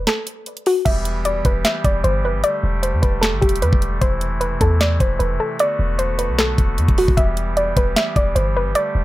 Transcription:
0.07 A4, snare, clap, closed hi-hat
0.27 closed hi-hat
0.46 closed hi-hat
0.57 closed hi-hat
0.66 F#4, open hi-hat
0.85 E1 E3 G3 B3 G4 E5, kick, closed hi-hat, crash
1.05 closed hi-hat
1.25 D5, closed hi-hat
1.45 E1 B4, kick, closed hi-hat
1.65 E5, snare, clap, closed hi-hat
1.84 E1 D5, kick, closed hi-hat
2.04 G1 C5, closed hi-hat
2.24 F#1 B4
2.34 G1
2.44 D3 G3 A3 D5, closed hi-hat
2.63 E1
2.83 C5, closed hi-hat
2.94 E2
3.02 E1 B4, kick, closed hi-hat
3.21 A4, snare, clap, closed hi-hat
3.33 G1
3.41 E1 G4, kick, closed hi-hat
3.49 closed hi-hat
3.56 closed hi-hat
3.62 E2 B4, closed hi-hat
3.73 E1, kick
3.82 closed hi-hat
4.01 E1 C3 E3 E4 C5, kick, closed hi-hat
4.21 closed hi-hat
4.41 B4, closed hi-hat
4.61 E2 A4, kick, closed hi-hat
4.81 D5, snare, clap, closed hi-hat
5.00 E1 C5, kick, closed hi-hat
5.19 E1 B4, closed hi-hat
5.40 A4
5.59 D3 B3 F#4 D5, closed hi-hat
5.79 E1
5.99 C5, closed hi-hat
6.19 B4, closed hi-hat
6.29 B1
6.39 A4, snare, clap, closed hi-hat
6.58 E1, kick, closed hi-hat
6.78 E2, closed hi-hat
6.88 E1, kick, closed hi-hat
6.98 F#4, open hi-hat
7.08 E1, kick
7.17 E1 E3 G3 G4 E5, kick, closed hi-hat
7.37 closed hi-hat
7.57 D5, closed hi-hat
7.77 E1 B4, kick, closed hi-hat
7.96 E5, snare, clap, closed hi-hat
8.16 E1 D5, kick, closed hi-hat
8.35 G1 C5, closed hi-hat
8.55 F#1 B4
8.66 G1
8.75 D3 A3 D5, closed hi-hat
8.95 E1

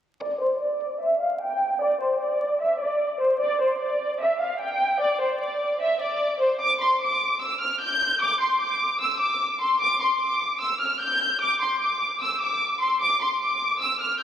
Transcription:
0.21 D5
0.42 C5
0.62 D5
1.01 E5
1.21 F5
1.41 G5
1.82 D5
2.01 C5
2.21 D5
2.61 E5
2.81 D5
3.21 C5
3.41 D5
3.62 C5
3.81 D5
4.21 E5
4.41 F5
4.61 G5
5.02 D5
5.22 C5
5.41 D5
5.82 E5
6.02 D5
6.41 C5
6.61 D6
6.82 C6
7.02 D6
7.41 E6
7.61 F6
7.82 G6
8.22 D6
8.41 C6
8.61 D6
9.02 E6
9.21 D6
9.62 C6
9.82 D6
10.03 C6
10.22 D6
10.61 E6
10.81 F6
11.02 G6
11.42 D6
11.62 C6
11.81 D6
12.22 E6
12.42 D6
12.82 C6
13.02 D6
13.22 C6
13.42 D6
13.82 E6
14.02 F6

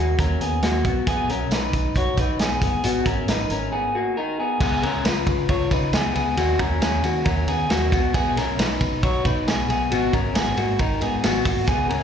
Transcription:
Already playing: D#2 A#3 F#4
0.18 D#2 C#4 A#4, kick, closed hi-hat
0.40 D#2 B3 G#4, closed hi-hat
0.62 D#2 A#3 F#4, snare, closed hi-hat
0.85 B1 B3 F#4, kick, closed hi-hat
1.07 B3 G#4, kick, closed hi-hat, tambourine
1.28 B1 C#4 A#4, closed hi-hat, tambourine
1.50 B1 D#4 B4, snare, closed hi-hat, tambourine
1.73 B1, kick, closed hi-hat, tambourine
1.95 B1 F#4 C#5, kick, closed hi-hat, tambourine
2.17 B1 D#4 B4, kick, closed hi-hat, tambourine
2.39 B1 B3 G#4, snare, closed hi-hat, tambourine
2.62 F#1 B3 G#4, kick, closed hi-hat, tambourine
2.83 G#1 B3 F#4, closed hi-hat, tambourine
3.06 G#1 C#4 A#4, kick, closed hi-hat, tambourine
3.27 G#1 D#4 B4, snare, closed hi-hat, tambourine
3.49 G#1 C#4 A#4, closed hi-hat, tambourine
3.72 B3 G#4
3.95 A#3 F#4
4.17 D#4 A#4
4.40 B3 G#4
4.60 C#2 B3 G#4, kick, crash, tambourine
4.82 C#2 C#4 A#4, ride
5.04 C#2 F4 B4, snare, ride, tambourine
5.27 C#3, kick, ride, tambourine
5.49 C#2 F4 C#5, kick, ride
5.71 C#3 D#4 B4, kick, ride, tambourine
5.93 C#2 B3 G#4, snare, ride, tambourine
6.15 C#2 B3 G#4, ride, tambourine
6.37 D#2 A#3 F#4, ride, tambourine
6.59 D#2 C#4 A#4, kick, ride, tambourine
6.81 D#2 C#4 G#4, snare, ride, tambourine
7.03 D#3 A#3 F#4, ride, tambourine
7.25 D#2 C#4 A#4, kick, ride, tambourine
7.48 D#3 B3 G#4, ride, tambourine
7.70 D#2 A#3 F#4, snare, ride, tambourine
7.92 B1 B3 F#4, kick, ride, tambourine
8.14 B3 G#4, kick, ride, tambourine
8.36 B1 C#4 A#4, snare, ride, tambourine
8.59 B1 D#4 B4, snare, ride, tambourine
8.81 B2, kick, ride, tambourine
9.03 B1 F#4 C#5, kick, ride, tambourine
9.25 B2 D#4 B4, kick, ride, tambourine
9.46 B1 B3 G#4, snare, ride, tambourine
9.69 B1 B3 G#4, ride, tambourine
9.91 G#1 B3 F#4, ride, tambourine
10.13 G#1 C#4 A#4, kick, ride, tambourine
10.35 G#1 B3 G#4, snare, ride, tambourine
10.57 G#2 A#3 F#4, ride, tambourine
10.78 G#1 D#4 A#4, kick, ride, tambourine
11.01 G#2 B3 G#4, ride, tambourine
11.23 G#1 B3 F#4, snare, ride, tambourine
11.45 G#1 A#3 F#4, kick, open hi-hat, ride, tambourine
11.67 C#2 B3 G#4, kick, hi-hat pedal, ride, tambourine
11.89 C#2 C#4 A#4, ride

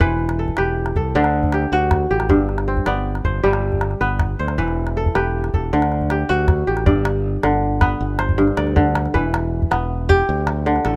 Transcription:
Already playing: G4 C5
0.00 E1 E3 B4, calabash thump
0.19 calabash click
0.29 calabash click
0.39 A4
0.48 calabash thump
0.57 E1 G4 B4, calabash click
0.86 calabash click
0.96 C2 A4, calabash thump
1.15 D2 D3 D4
1.24 calabash click
1.43 calabash thump
1.52 G4, calabash click
1.62 calabash click
1.72 D2 F#4
1.91 calabash thump, calabash click
2.11 A1 G4
2.20 calabash click
2.29 G1 G2, calabash thump
2.49 calabash click
2.58 calabash click
2.68 C4
2.77 calabash thump
2.86 G1 B3 D5, calabash click
3.15 calabash click
3.25 G1 C5, calabash thump
3.43 G1 G3 G4
3.53 calabash click
3.72 calabash thump
3.81 calabash click
3.91 calabash click
4.01 G1 B3 B4
4.20 calabash thump, calabash click
4.39 D2 C5
4.48 calabash click
4.58 E1 E3 B4, calabash thump
4.68 calabash click
4.87 calabash click
4.97 A4
5.06 calabash thump
5.15 E1 G4 B4, calabash click
5.44 calabash click
5.54 E1 A4, calabash thump
5.73 D2 D3
5.82 calabash click
5.92 calabash click
6.01 calabash thump
6.10 G4, calabash click
6.29 D2 F#4, calabash click
6.48 calabash thump, calabash click
6.67 A1 G4
6.77 calabash click
6.86 G1 G2 D5, calabash thump
7.05 calabash click
7.43 G1 D3, calabash click
7.81 B3 B4, calabash thump, calabash click
8.01 G1
8.19 C5, calabash click
8.29 calabash thump
8.38 G2
8.48 calabash click
8.57 D2 D5, calabash click
8.67 calabash click
8.76 D3, calabash thump, calabash click
8.95 calabash click
9.06 calabash click
9.14 E1 E3 B4, calabash thump
9.34 calabash click
9.62 calabash thump
9.71 E1 B3, calabash click
10.09 G4, calabash thump
10.29 D2
10.47 calabash click
10.66 D3, calabash click
10.76 calabash click
10.85 A1 A4, calabash click

